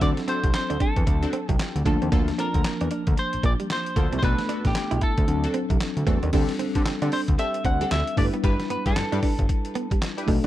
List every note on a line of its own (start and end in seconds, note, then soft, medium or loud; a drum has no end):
0.00 0.13 D2 loud
0.00 1.81 F#3 medium
0.00 0.21 C4 medium
0.00 1.82 C4 medium
0.00 0.21 D4 medium
0.00 0.12 D4 medium
0.00 1.82 D4 medium
0.00 0.21 F#4 medium
0.00 0.21 A4 medium
0.00 1.83 A4 medium
0.00 0.09 D5 loud
0.00 kick loud
0.00 closed hi-hat medium
0.17 muted clean electric guitar stroke soft
0.17 snare medium
0.17 closed hi-hat medium
0.27 0.47 C4 medium
0.27 0.38 C4 medium
0.27 0.47 D4 medium
0.27 0.47 F#4 medium
0.27 0.47 A4 medium
0.27 0.53 C5 medium
0.27 closed hi-hat medium
0.44 0.51 C2 loud
0.44 kick medium
0.44 closed hi-hat medium
0.54 0.82 C5 medium
0.54 muted clean electric guitar stroke soft
0.54 snare loud
0.54 clap medium
0.54 closed hi-hat medium
0.70 0.78 D2 medium
0.70 0.77 D4 medium
0.70 closed hi-hat medium
0.80 0.91 D4 medium
0.80 1.52 A4 medium
0.80 kick medium
0.80 closed hi-hat medium
0.96 1.04 E2 medium
0.96 kick medium
0.96 closed hi-hat soft
1.07 1.26 D2 loud
1.07 muted clean electric guitar stroke soft
1.07 kick medium
1.07 closed hi-hat medium
1.22 1.38 C4 medium
1.22 1.38 D4 medium
1.22 1.38 F#4 medium
1.22 1.38 A4 medium
1.22 closed hi-hat medium
1.33 1.44 C4 medium
1.33 closed hi-hat medium
1.49 1.56 C2 medium
1.49 1.56 F#3 medium
1.49 1.82 G4 medium
1.49 kick medium
1.49 closed hi-hat medium
1.59 muted clean electric guitar stroke soft
1.59 snare loud
1.59 clap medium
1.59 closed hi-hat medium
1.76 1.83 D2 medium
1.76 closed hi-hat medium
1.85 1.97 D2 loud
1.85 3.92 F3 medium
1.85 1.96 A3 medium
1.85 3.92 A#3 medium
1.85 2.05 A#3 medium
1.85 2.05 D4 medium
1.85 3.93 D4 medium
1.85 2.05 F4 medium
1.85 2.05 A4 medium
1.85 3.93 A5 medium
1.85 kick medium
1.85 closed hi-hat medium
2.02 2.09 D#2 loud
2.02 2.09 C4 medium
2.02 closed hi-hat soft
2.12 2.31 D2 loud
2.12 2.31 A#3 medium
2.12 2.22 A#3 medium
2.12 2.31 D4 medium
2.12 2.31 F4 medium
2.12 2.31 A4 loud
2.12 kick loud
2.12 closed hi-hat medium
2.28 muted clean electric guitar stroke soft
2.28 snare medium
2.28 closed hi-hat medium
2.38 2.58 A#3 medium
2.38 2.49 C4 medium
2.38 2.58 D4 medium
2.38 2.58 F4 medium
2.38 2.58 A4 medium
2.38 3.19 A#4 medium
2.38 closed hi-hat medium
2.54 2.62 D2 loud
2.54 kick medium
2.54 closed hi-hat medium
2.64 muted clean electric guitar stroke soft
2.64 snare loud
2.64 clap medium
2.64 closed hi-hat medium
2.81 2.88 E2 medium
2.81 2.88 D4 medium
2.81 closed hi-hat medium
2.91 3.02 D4 medium
2.91 closed hi-hat medium
3.07 3.15 D2 medium
3.07 kick loud
3.07 closed hi-hat medium
3.17 3.45 C5 loud
3.17 muted clean electric guitar stroke soft
3.17 closed hi-hat medium
3.33 3.38 A#1 soft
3.33 closed hi-hat medium
3.43 3.55 A#1 medium
3.43 3.54 A#3 medium
3.43 3.52 D5 medium
3.43 kick medium
3.43 closed hi-hat medium
3.60 3.66 G3 medium
3.60 closed hi-hat medium
3.70 4.17 C5 medium
3.70 muted clean electric guitar stroke soft
3.70 snare loud
3.70 clap medium
3.70 closed hi-hat medium
3.86 closed hi-hat medium
3.96 4.08 D2 medium
3.96 4.07 A3 medium
3.96 4.15 A#3 medium
3.96 4.16 D4 medium
3.96 4.16 F4 medium
3.96 4.16 A4 medium
3.96 kick medium
3.96 closed hi-hat medium
4.12 4.20 C2 loud
4.12 4.19 C4 medium
4.12 closed hi-hat soft
4.19 5.25 A3 medium
4.19 5.26 B3 medium
4.19 4.42 B3 medium
4.19 4.33 B3 medium
4.19 4.42 D4 medium
4.19 4.23 C5 medium
4.19 kick loud
4.19 closed hi-hat medium
4.23 4.34 B1 loud
4.23 5.26 D4 medium
4.23 4.42 F#4 medium
4.23 4.42 A4 loud
4.23 5.27 A4 medium
4.23 4.67 B4 loud
4.39 muted clean electric guitar stroke soft
4.39 snare medium
4.39 closed hi-hat medium
4.49 4.68 B3 medium
4.49 4.68 D4 medium
4.49 4.59 D4 medium
4.49 4.68 F#4 medium
4.49 4.68 A4 medium
4.49 closed hi-hat medium
4.65 4.72 A1 medium
4.65 5.03 G4 medium
4.65 kick medium
4.65 snare medium
4.65 closed hi-hat medium
4.75 muted clean electric guitar stroke soft
4.75 snare loud
4.75 clap medium
4.75 closed hi-hat medium
4.91 4.99 B1 loud
4.91 4.98 E4 medium
4.91 closed hi-hat medium
5.01 5.12 E4 medium
5.01 5.51 A4 medium
5.01 kick medium
5.01 closed hi-hat medium
5.18 5.25 D2 medium
5.18 kick loud
5.18 closed hi-hat soft
5.27 5.47 D2 loud
5.27 6.31 F#3 medium
5.27 6.31 C4 medium
5.27 6.31 D4 medium
5.27 6.32 A4 medium
5.27 muted clean electric guitar stroke soft
5.27 closed hi-hat medium
5.44 5.59 C4 medium
5.44 5.59 D4 medium
5.44 5.59 F#4 medium
5.44 5.59 A4 medium
5.44 closed hi-hat medium
5.54 5.65 C4 medium
5.54 closed hi-hat medium
5.70 5.78 C2 medium
5.70 5.77 F#3 medium
5.70 kick medium
5.70 closed hi-hat medium
5.80 muted clean electric guitar stroke soft
5.80 snare loud
5.80 clap medium
5.80 closed hi-hat medium
5.97 6.04 D2 medium
5.97 closed hi-hat medium
6.07 6.18 E2 medium
6.07 6.17 A3 medium
6.07 6.26 C4 medium
6.07 6.26 D4 medium
6.07 6.26 F#4 medium
6.07 6.26 A4 medium
6.07 kick medium
6.07 closed hi-hat medium
6.23 6.30 D#2 loud
6.23 6.30 D4 medium
6.23 closed hi-hat soft
6.32 6.44 D2 loud
6.32 8.13 G3 medium
6.32 6.52 C4 medium
6.32 8.14 C4 medium
6.32 6.52 D4 medium
6.32 6.44 D4 medium
6.32 8.14 D4 medium
6.32 6.53 G4 medium
6.32 6.53 A4 loud
6.32 8.14 A4 medium
6.32 kick loud
6.32 closed hi-hat medium
6.32 crash loud
6.49 muted clean electric guitar stroke soft
6.49 snare medium
6.49 closed hi-hat medium
6.59 6.66 D3 soft
6.59 6.70 C4 medium
6.59 closed hi-hat medium
6.75 6.83 D3 loud
6.75 6.91 C4 medium
6.75 6.91 D4 medium
6.75 6.91 G4 medium
6.75 6.91 A4 medium
6.75 kick medium
6.75 closed hi-hat medium
6.86 6.92 D3 medium
6.86 muted clean electric guitar stroke soft
6.86 snare loud
6.86 clap medium
6.86 closed hi-hat medium
7.02 7.09 D3 medium
7.02 7.17 C4 medium
7.02 7.17 D4 medium
7.02 7.09 D4 medium
7.02 7.17 G4 medium
7.02 7.17 A4 medium
7.02 closed hi-hat medium
7.12 7.23 D4 medium
7.12 7.20 C5 medium
7.12 open hi-hat medium
7.28 7.36 D2 medium
7.28 kick medium
7.28 closed hi-hat medium
7.38 7.58 C4 medium
7.38 7.58 D4 medium
7.38 7.58 G4 medium
7.38 7.58 A4 medium
7.38 7.65 E5 loud
7.38 muted clean electric guitar stroke soft
7.38 closed hi-hat medium
7.54 closed hi-hat medium
7.65 7.83 D2 loud
7.65 7.76 C4 medium
7.65 7.92 F#5 medium
7.65 kick medium
7.65 closed hi-hat medium
7.81 7.88 G3 medium
7.81 7.96 C4 medium
7.81 7.96 D4 medium
7.81 7.96 G4 medium
7.81 7.96 A4 medium
7.81 closed hi-hat medium
7.91 8.03 D2 loud
7.91 8.18 E5 loud
7.91 muted clean electric guitar stroke soft
7.91 snare loud
7.91 clap medium
7.91 closed hi-hat medium
8.07 closed hi-hat medium
8.16 8.29 G1 loud
8.16 10.23 G3 medium
8.16 8.28 A3 medium
8.16 10.24 D4 medium
8.16 8.37 D4 medium
8.16 8.37 E4 medium
8.16 10.24 E4 medium
8.16 8.37 G4 medium
8.16 8.26 A4 medium
8.16 8.37 B4 medium
8.16 8.25 D5 medium
8.16 kick medium
8.16 open hi-hat medium
8.25 10.28 B4 medium
8.33 8.40 B3 medium
8.33 closed hi-hat soft
8.44 8.55 G1 loud
8.44 8.54 G3 medium
8.44 8.63 D4 medium
8.44 8.63 E4 medium
8.44 8.63 G4 medium
8.44 8.63 B4 loud
8.44 8.70 B4 medium
8.44 kick loud
8.44 closed hi-hat medium
8.60 muted clean electric guitar stroke soft
8.60 snare medium
8.60 closed hi-hat soft
8.70 8.77 G2 soft
8.70 8.81 B3 medium
8.70 8.87 B4 medium
8.70 closed hi-hat medium
8.86 8.93 G2 loud
8.86 9.01 D4 medium
8.86 9.01 E4 medium
8.86 9.01 G4 medium
8.86 10.24 A4 medium
8.86 9.02 B4 medium
8.86 kick medium
8.86 closed hi-hat medium
8.96 9.03 G2 medium
8.96 muted clean electric guitar stroke soft
8.96 snare loud
8.96 clap medium
8.96 closed hi-hat medium
9.12 9.20 G2 loud
9.12 9.19 D4 medium
9.12 9.28 D4 medium
9.12 9.28 E4 medium
9.12 9.28 G4 medium
9.12 9.28 B4 medium
9.12 closed hi-hat medium
9.23 9.33 D4 medium
9.23 kick medium
9.23 open hi-hat medium
9.39 9.46 G1 medium
9.39 kick loud
9.39 closed hi-hat medium
9.49 muted clean electric guitar stroke soft
9.49 kick medium
9.49 closed hi-hat medium
9.65 closed hi-hat medium
9.75 9.86 B3 medium
9.75 closed hi-hat medium
9.91 9.98 G3 medium
9.91 kick medium
9.91 closed hi-hat medium
10.02 muted clean electric guitar stroke soft
10.02 snare loud
10.02 clap medium
10.02 closed hi-hat medium
10.17 10.33 D4 medium
10.17 10.33 E4 medium
10.17 10.33 G4 medium
10.17 10.33 B4 medium
10.17 closed hi-hat medium
10.27 10.39 B1 medium
10.27 10.47 A3 medium
10.27 10.39 A3 medium
10.27 10.47 D4 medium
10.27 10.47 F#4 medium
10.27 10.47 A4 medium
10.27 kick medium
10.27 open hi-hat medium
10.44 10.47 D4 medium